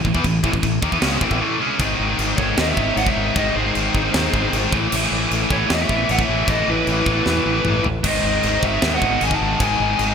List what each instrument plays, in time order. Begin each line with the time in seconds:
0.05 fingered electric bass A1, distorted electric guitar A2 E3, kick
0.14 fingered electric bass E2, distorted electric guitar E3 B3, kick
0.24 fingered electric bass A1, distorted electric guitar A2 E3, kick, china
0.43 fingered electric bass A1, distorted electric guitar A2 E3, kick
0.53 fingered electric bass A1, distorted electric guitar A2 E3, kick
0.63 fingered electric bass A1, distorted electric guitar A2 E3, kick, china
0.82 fingered electric bass D#2, distorted electric guitar D#3 A#3, kick
0.91 fingered electric bass E2, distorted electric guitar E3 B3, kick
1.01 fingered electric bass C#2, distorted electric guitar C#3 G#3 C#4, snare, china
1.21 fingered electric bass A1, distorted electric guitar A2 E3, kick
1.31 fingered electric bass A1, distorted electric guitar A2 E3, kick
1.40 distorted electric guitar A2 E3 A3
1.60 distorted electric guitar C#3 G#3 C#4
1.80 fingered electric bass G#1, distorted electric guitar G#2 D#3 G#3, kick, china
1.88 distorted electric guitar G#2 D#3
1.96 fingered electric bass G#1, distorted electric guitar G#2 D#3
2.03 distorted electric guitar G#2 D#3
2.11 distorted electric guitar G#2 D#3
2.18 fingered electric bass G#1, distorted electric guitar G#2 D#3, china
2.27 distorted electric guitar G#2 D#3
2.34 distorted electric guitar G#2 D#3, lead electric guitar C#5, kick
2.39 fingered electric bass G#1, distorted electric guitar D#3, lead electric guitar A4
2.43 distorted electric guitar G#2
2.49 distorted electric guitar G#2 D#3
2.57 fingered electric bass D#2, distorted electric guitar G#2 D#3 G#3, lead electric guitar C5 D#5, snare, china
2.64 distorted electric guitar G#2 D#3
2.68 lead electric guitar C#5 E5
2.73 distorted electric guitar G#2 D#3, kick
2.77 fingered electric bass G#1, distorted electric guitar G#2
2.81 distorted electric guitar D#3
2.88 distorted electric guitar G#2 D#3
2.95 fingered electric bass G#1, distorted electric guitar G#2 D#3, lead electric guitar D#5 F#5, china
3.03 distorted electric guitar G#2 D#3, kick
3.08 distorted electric guitar G#2 D#3, lead electric guitar C#5 E5
3.16 fingered electric bass G#1, distorted electric guitar G#2
3.20 distorted electric guitar D#3
3.26 distorted electric guitar G#2 D#3
3.36 fingered electric bass G#1, distorted electric guitar G#2 D#3 G#3, lead electric guitar C5 D#5, kick, china
3.43 distorted electric guitar G#2 D#3
3.50 distorted electric guitar G#2 D#3
3.55 fingered electric bass G#1, distorted electric guitar G#2 D#3, lead electric guitar G#4 C5
3.66 distorted electric guitar G#2 D#3
3.74 fingered electric bass G#1, distorted electric guitar G#2 D#3, china
3.82 distorted electric guitar G#2 D#3
3.88 distorted electric guitar G#2 D#3
3.94 fingered electric bass G#1, distorted electric guitar G#2 D#3, kick
4.04 distorted electric guitar G#2 D#3
4.11 fingered electric bass D#2, distorted electric guitar G#2 D#3, snare, china
4.16 distorted electric guitar G#2 D#3 G#3
4.26 distorted electric guitar G#2 D#3
4.33 fingered electric bass G#1, distorted electric guitar G#2 D#3, kick
4.42 distorted electric guitar G#2 D#3
4.49 fingered electric bass G#1, distorted electric guitar G#2 D#3
4.53 distorted electric guitar G#2 D#3, china
4.64 distorted electric guitar G#2 D#3
4.72 fingered electric bass A1, distorted electric guitar A2 E3 A3, kick
4.80 distorted electric guitar A2 E3
4.88 distorted electric guitar A2 E3
4.92 fingered electric bass A1, crash, china
4.96 distorted electric guitar A2 E3
5.03 distorted electric guitar A2 E3
5.11 fingered electric bass A1, distorted electric guitar A2 E3
5.19 distorted electric guitar A2 E3
5.27 distorted electric guitar A2 E3
5.31 fingered electric bass A1, distorted electric guitar A2, china
5.36 distorted electric guitar E3
5.42 distorted electric guitar A2 E3
5.49 fingered electric bass A1, distorted electric guitar A2 E3 A3, lead electric guitar A4 C#5, kick
5.57 distorted electric guitar A2 E3
5.67 distorted electric guitar A2 E3, lead electric guitar A4, snare, china
5.71 fingered electric bass E2, distorted electric guitar A2 E3, lead electric guitar D#5
5.81 distorted electric guitar A2 E3, lead electric guitar C#5 E5
5.89 fingered electric bass A1, distorted electric guitar A2 E3, kick
5.97 distorted electric guitar A2 E3
6.04 distorted electric guitar A2 E3
6.09 fingered electric bass A1, distorted electric guitar A2 E3, lead electric guitar C#5 F#5, china
6.19 distorted electric guitar A2 E3, lead electric guitar C#5 E5, kick
6.28 fingered electric bass A1, distorted electric guitar A2 E3 A3
6.36 distorted electric guitar A2 E3
6.44 fingered electric bass A1, distorted electric guitar A2 E3, kick, china
6.49 distorted electric guitar A2, lead electric guitar A4 D#5
6.53 distorted electric guitar E3
6.60 distorted electric guitar A2 E3
6.67 fingered electric bass A1, distorted electric guitar A2 E3, lead electric guitar E4 B4
6.75 distorted electric guitar A2 E3
6.83 distorted electric guitar A2 E3, china
6.87 fingered electric bass A1, distorted electric guitar A2
6.92 distorted electric guitar E3
6.99 distorted electric guitar A2 E3
7.06 fingered electric bass A1, distorted electric guitar A2 E3 A3, kick
7.14 distorted electric guitar A2 E3
7.22 distorted electric guitar A2 E3, snare
7.26 fingered electric bass E2, distorted electric guitar A2
7.31 distorted electric guitar E3
7.38 distorted electric guitar A2 E3
7.45 fingered electric bass A1, distorted electric guitar A2 E3
7.54 distorted electric guitar A2 E3
7.62 fingered electric bass A1, distorted electric guitar A2 E3, mid tom
7.69 distorted electric guitar A2 E3
7.77 distorted electric guitar A2 E3
7.84 fingered electric bass A1, floor tom
8.04 fingered electric bass G#1, distorted electric guitar G#2 D#3 G#3, lead electric guitar C5 D#5, kick, crash, china
8.12 distorted electric guitar G#2 D#3
8.19 distorted electric guitar G#2 D#3
8.23 fingered electric bass G#1, distorted electric guitar G#2
8.28 distorted electric guitar D#3
8.34 distorted electric guitar G#2 D#3
8.42 fingered electric bass G#1, distorted electric guitar G#2 D#3, china
8.51 distorted electric guitar G#2 D#3
8.58 distorted electric guitar G#2 D#3
8.63 fingered electric bass G#1, distorted electric guitar D#3, lead electric guitar C#5 E5, kick
8.67 distorted electric guitar G#2
8.73 distorted electric guitar G#2 D#3
8.82 fingered electric bass D#2, distorted electric guitar G#2 D#3 G#3, snare, china
8.88 distorted electric guitar G#2 D#3
8.94 distorted electric guitar G#2 D#3, lead electric guitar D#5 F#5
9.02 fingered electric bass G#1, distorted electric guitar G#2 D#3, kick
9.12 distorted electric guitar G#2 D#3
9.20 fingered electric bass G#1, distorted electric guitar G#2 D#3, lead electric guitar D#5 G#5, china
9.27 distorted electric guitar G#2 D#3, kick
9.33 distorted electric guitar G#2 D#3, lead electric guitar F#5 A5
9.41 fingered electric bass G#1, distorted electric guitar G#2 D#3
9.51 distorted electric guitar G#2 D#3
9.60 fingered electric bass G#1, distorted electric guitar G#2 D#3 G#3, lead electric guitar D#5 G#5, kick, china
9.68 distorted electric guitar G#2 D#3
9.76 distorted electric guitar G#2 D#3
9.80 fingered electric bass G#1, distorted electric guitar G#2 D#3
9.90 distorted electric guitar G#2 D#3
9.97 fingered electric bass G#1, distorted electric guitar G#2 D#3, china
10.06 distorted electric guitar G#2 D#3